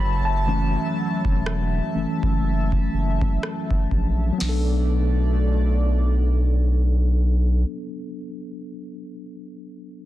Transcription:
Already playing: F#3 E5 A5 B5, downlifter
0.00 F#1
0.25 A5
0.47 E3 A3 C#4
1.25 E1, kick
1.46 cross-stick
1.95 F#1 E3 A3 C#4
2.23 F#1, kick
2.72 kick
2.93 F#1
3.21 kick
3.43 cross-stick
3.71 kick
3.91 A#1, kick
4.33 F#3
4.38 B1 B2 A3 B3 D5, snare, open hi-hat
4.44 D4
4.49 A4

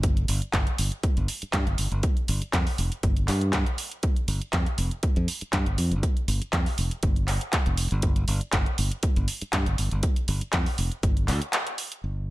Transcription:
Already playing: G1
0.03 kick, closed hi-hat
0.17 closed hi-hat
0.28 G1, open hi-hat
0.42 closed hi-hat
0.53 G1, kick, clap, closed hi-hat
0.67 closed hi-hat
0.78 G1, open hi-hat
0.92 closed hi-hat
1.03 muted fingered electric bass stroke, kick, closed hi-hat
1.17 G1, closed hi-hat
1.28 open hi-hat
1.42 muted fingered electric bass stroke, closed hi-hat
1.53 G2, kick, clap, closed hi-hat
1.67 G1, closed hi-hat
1.78 G1, open hi-hat
1.92 G1, closed hi-hat
2.03 kick, closed hi-hat
2.17 closed hi-hat
2.28 G1, open hi-hat
2.42 muted fingered electric bass stroke, closed hi-hat
2.53 F2, kick, clap, closed hi-hat
2.67 open hi-hat
2.78 F1, open hi-hat
2.92 closed hi-hat
3.03 G1, kick, closed hi-hat
3.17 closed hi-hat
3.28 G2, clap, open hi-hat
3.41 closed hi-hat
3.53 kick, clap, closed hi-hat
3.66 closed hi-hat
3.78 open hi-hat
3.92 closed hi-hat
4.03 kick, closed hi-hat
4.16 closed hi-hat
4.28 G1, open hi-hat
4.41 closed hi-hat
4.53 F2, kick, clap, closed hi-hat
4.66 closed hi-hat
4.78 F1, open hi-hat
4.91 closed hi-hat
5.03 muted fingered electric bass stroke, kick, closed hi-hat
5.16 F2, closed hi-hat
5.28 open hi-hat
5.41 muted fingered electric bass stroke, closed hi-hat
5.53 G2, kick, clap, closed hi-hat
5.66 G1, closed hi-hat
5.78 F2, open hi-hat
5.91 G1, closed hi-hat
6.03 kick, closed hi-hat
6.17 closed hi-hat
6.28 G1, open hi-hat
6.42 muted fingered electric bass stroke, closed hi-hat
6.53 F2, kick, clap, closed hi-hat
6.66 open hi-hat
6.78 F1, open hi-hat
6.91 closed hi-hat
7.03 G1, kick, closed hi-hat
7.16 closed hi-hat
7.28 clap, open hi-hat
7.41 closed hi-hat
7.53 kick, clap, closed hi-hat
7.66 F1, closed hi-hat
7.77 open hi-hat
7.91 G1, closed hi-hat
8.02 kick, closed hi-hat
8.16 closed hi-hat
8.28 G1, open hi-hat
8.41 closed hi-hat
8.53 G1, kick, clap, closed hi-hat
8.66 closed hi-hat
8.78 G1, open hi-hat
8.91 closed hi-hat
9.03 muted fingered electric bass stroke, kick, closed hi-hat
9.16 G1, closed hi-hat
9.28 open hi-hat
9.41 muted fingered electric bass stroke, closed hi-hat
9.53 G2, kick, clap, closed hi-hat
9.66 G1, closed hi-hat
9.78 G1, open hi-hat
9.91 G1, closed hi-hat
10.03 kick, closed hi-hat
10.16 closed hi-hat
10.28 G1, open hi-hat
10.41 muted fingered electric bass stroke, closed hi-hat
10.53 F2, kick, clap, closed hi-hat
10.66 open hi-hat
10.78 F1, open hi-hat
10.92 closed hi-hat
11.03 G1, kick, closed hi-hat
11.17 closed hi-hat
11.28 D2, clap, open hi-hat
11.42 closed hi-hat
11.53 clap, closed hi-hat
11.67 closed hi-hat
11.78 open hi-hat
11.92 closed hi-hat
12.04 G1

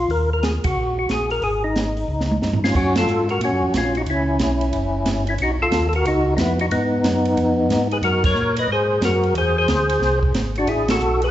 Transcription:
Already playing: F4
0.09 D#2 A#4, open hi-hat
0.33 A#4
0.43 G#4, snare, closed hi-hat
0.64 C#2 F#4, kick, ride
0.75 A#1
0.99 F#4
1.09 A#1 G#4, snare, closed hi-hat
1.30 A#4, open hi-hat
1.42 G#1 G#4, open hi-hat
1.64 D#4
1.76 snare, closed hi-hat
1.97 open hi-hat
2.08 C#2
2.21 snare
2.32 high tom
2.42 G2, snare
2.53 floor tom
2.64 C#4 F4, snare
2.75 F#2 C#4 F#4, kick, crash
2.95 F4 A4, snare, ride
3.07 G#2, hi-hat pedal
3.29 F#4 A#4, ride
3.41 A#2 F#4, ride
3.45 C#4
3.52 F#2
3.63 F2
3.74 A#1 F4, snare, hi-hat pedal, ride
3.78 C#4
3.95 D#4 F#4, ride
4.06 C#2 E4, ride
4.11 C#4
4.39 B1, snare, hi-hat pedal, ride
4.61 ride
4.73 F#1, ride
5.06 G1, snare, hi-hat pedal, ride
5.27 C#4 E4, ride
5.38 B1 F#4, ride
5.43 D#4
5.60 B1 F4 A4
5.71 D#2, snare, hi-hat pedal, ride
5.89 A4, ride
5.95 F#4 A#4
6.04 C#2 D#4 F#4, ride
6.37 F2 B3 D#4 E4, snare, hi-hat pedal, ride
6.59 D#4 F#4, ride
6.71 G#2 B3 D#4, ride
7.04 F#2, snare, hi-hat pedal, ride
7.25 ride
7.37 F2, ride
7.69 G#2, snare, hi-hat pedal, ride
7.91 G#4 B4, ride
8.02 F#2 F#4 A#4, ride
8.24 A#4 C#5, kick, crash
8.35 A#2, hi-hat pedal
8.56 B4 D#5, ride
8.68 G#2 G#4 C5
9.01 F#2 F#4 A#4, snare, hi-hat pedal, ride
9.23 ride
9.35 E2 G#4 C5, ride
9.58 G#4 C5
9.67 D2, snare, hi-hat pedal, ride
9.89 ride
10.00 C2, snare
10.23 kick
10.33 G#1, snare, hi-hat pedal, ride
10.55 D4 F#4, ride
10.66 A1 E4 G#4, ride
10.88 F#4 A4, snare, ride
10.99 B1, hi-hat pedal
11.22 G#4 B4, ride

